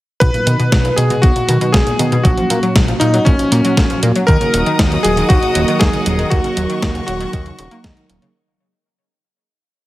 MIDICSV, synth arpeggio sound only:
0, 0, Header, 1, 2, 480
1, 0, Start_track
1, 0, Key_signature, -6, "minor"
1, 0, Tempo, 508475
1, 202, Time_signature, 4, 2, 24, 8
1, 9312, End_track
2, 0, Start_track
2, 0, Title_t, "Synth arpeggio sound"
2, 0, Program_c, 0, 84
2, 203, Note_on_c, 0, 47, 83
2, 259, Note_off_c, 0, 47, 0
2, 322, Note_on_c, 0, 46, 76
2, 436, Note_off_c, 0, 46, 0
2, 442, Note_on_c, 0, 51, 96
2, 556, Note_off_c, 0, 51, 0
2, 563, Note_on_c, 0, 47, 100
2, 656, Note_off_c, 0, 47, 0
2, 684, Note_on_c, 0, 47, 81
2, 740, Note_off_c, 0, 47, 0
2, 804, Note_on_c, 0, 46, 79
2, 917, Note_off_c, 0, 46, 0
2, 924, Note_on_c, 0, 51, 100
2, 1037, Note_off_c, 0, 51, 0
2, 1044, Note_on_c, 0, 47, 102
2, 1137, Note_off_c, 0, 47, 0
2, 1163, Note_on_c, 0, 47, 78
2, 1219, Note_off_c, 0, 47, 0
2, 1284, Note_on_c, 0, 46, 73
2, 1397, Note_off_c, 0, 46, 0
2, 1402, Note_on_c, 0, 51, 104
2, 1516, Note_off_c, 0, 51, 0
2, 1523, Note_on_c, 0, 47, 102
2, 1617, Note_off_c, 0, 47, 0
2, 1643, Note_on_c, 0, 47, 77
2, 1699, Note_off_c, 0, 47, 0
2, 1762, Note_on_c, 0, 46, 75
2, 1876, Note_off_c, 0, 46, 0
2, 1882, Note_on_c, 0, 51, 103
2, 1996, Note_off_c, 0, 51, 0
2, 2003, Note_on_c, 0, 47, 103
2, 2097, Note_off_c, 0, 47, 0
2, 2122, Note_on_c, 0, 54, 86
2, 2179, Note_off_c, 0, 54, 0
2, 2241, Note_on_c, 0, 53, 78
2, 2356, Note_off_c, 0, 53, 0
2, 2362, Note_on_c, 0, 58, 101
2, 2476, Note_off_c, 0, 58, 0
2, 2481, Note_on_c, 0, 54, 102
2, 2576, Note_off_c, 0, 54, 0
2, 2601, Note_on_c, 0, 54, 81
2, 2658, Note_off_c, 0, 54, 0
2, 2720, Note_on_c, 0, 53, 79
2, 2835, Note_off_c, 0, 53, 0
2, 2841, Note_on_c, 0, 58, 100
2, 2956, Note_off_c, 0, 58, 0
2, 2961, Note_on_c, 0, 54, 99
2, 3056, Note_off_c, 0, 54, 0
2, 3081, Note_on_c, 0, 54, 76
2, 3138, Note_off_c, 0, 54, 0
2, 3201, Note_on_c, 0, 53, 75
2, 3316, Note_off_c, 0, 53, 0
2, 3321, Note_on_c, 0, 58, 101
2, 3435, Note_off_c, 0, 58, 0
2, 3441, Note_on_c, 0, 54, 104
2, 3536, Note_off_c, 0, 54, 0
2, 3562, Note_on_c, 0, 54, 78
2, 3619, Note_off_c, 0, 54, 0
2, 3682, Note_on_c, 0, 53, 75
2, 3796, Note_off_c, 0, 53, 0
2, 3803, Note_on_c, 0, 58, 103
2, 3917, Note_off_c, 0, 58, 0
2, 3924, Note_on_c, 0, 54, 99
2, 4017, Note_off_c, 0, 54, 0
2, 4044, Note_on_c, 0, 51, 85
2, 4099, Note_off_c, 0, 51, 0
2, 4163, Note_on_c, 0, 49, 77
2, 4276, Note_off_c, 0, 49, 0
2, 4282, Note_on_c, 0, 54, 98
2, 4396, Note_off_c, 0, 54, 0
2, 4402, Note_on_c, 0, 51, 103
2, 4496, Note_off_c, 0, 51, 0
2, 4523, Note_on_c, 0, 51, 83
2, 4579, Note_off_c, 0, 51, 0
2, 4644, Note_on_c, 0, 49, 82
2, 4757, Note_off_c, 0, 49, 0
2, 4763, Note_on_c, 0, 54, 98
2, 4877, Note_off_c, 0, 54, 0
2, 4882, Note_on_c, 0, 51, 106
2, 4976, Note_off_c, 0, 51, 0
2, 5002, Note_on_c, 0, 51, 75
2, 5059, Note_off_c, 0, 51, 0
2, 5123, Note_on_c, 0, 49, 78
2, 5236, Note_off_c, 0, 49, 0
2, 5243, Note_on_c, 0, 54, 103
2, 5357, Note_off_c, 0, 54, 0
2, 5364, Note_on_c, 0, 51, 107
2, 5457, Note_off_c, 0, 51, 0
2, 5604, Note_on_c, 0, 49, 77
2, 5717, Note_off_c, 0, 49, 0
2, 5722, Note_on_c, 0, 54, 102
2, 5836, Note_off_c, 0, 54, 0
2, 5842, Note_on_c, 0, 51, 100
2, 5936, Note_off_c, 0, 51, 0
2, 5963, Note_on_c, 0, 51, 83
2, 6019, Note_off_c, 0, 51, 0
2, 6082, Note_on_c, 0, 49, 77
2, 6196, Note_off_c, 0, 49, 0
2, 6202, Note_on_c, 0, 54, 96
2, 6316, Note_off_c, 0, 54, 0
2, 6322, Note_on_c, 0, 51, 101
2, 6416, Note_off_c, 0, 51, 0
2, 6442, Note_on_c, 0, 51, 80
2, 6499, Note_off_c, 0, 51, 0
2, 6562, Note_on_c, 0, 49, 79
2, 6676, Note_off_c, 0, 49, 0
2, 6682, Note_on_c, 0, 54, 102
2, 6796, Note_off_c, 0, 54, 0
2, 6802, Note_on_c, 0, 51, 102
2, 6896, Note_off_c, 0, 51, 0
2, 6921, Note_on_c, 0, 51, 78
2, 6978, Note_off_c, 0, 51, 0
2, 7042, Note_on_c, 0, 49, 77
2, 7150, Note_off_c, 0, 49, 0
2, 7161, Note_on_c, 0, 49, 76
2, 7256, Note_off_c, 0, 49, 0
2, 7281, Note_on_c, 0, 58, 103
2, 7338, Note_off_c, 0, 58, 0
2, 7401, Note_on_c, 0, 56, 96
2, 7496, Note_off_c, 0, 56, 0
2, 7521, Note_on_c, 0, 51, 74
2, 7616, Note_off_c, 0, 51, 0
2, 7641, Note_on_c, 0, 51, 77
2, 7756, Note_off_c, 0, 51, 0
2, 7761, Note_on_c, 0, 49, 102
2, 7818, Note_off_c, 0, 49, 0
2, 9312, End_track
0, 0, End_of_file